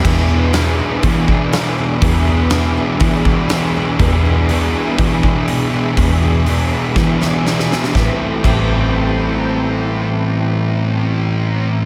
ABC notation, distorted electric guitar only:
X:1
M:4/4
L:1/8
Q:1/4=121
K:Am
V:1 name="Distorted electric guitar" clef=bass
[E,,B,,E,]2 [E,,B,,E,]2 [E,,B,,E,] [B,,E,]2 [B,,E,] | [E,,B,,E,]2 [E,,B,,E,]2 [E,,B,,E,] [B,,E,]2 [B,,E,] | [E,,B,,E,]2 [E,,B,,E,]2 [E,,B,,E,] [B,,E,]2 [B,,E,] | [E,,B,,E,]2 [E,,B,,E,]2 [E,,B,,E,] [B,,E,]2 [B,,E,] |
[A,,E,A,] z [A,,E,A,]6- | [A,,E,A,]8 |]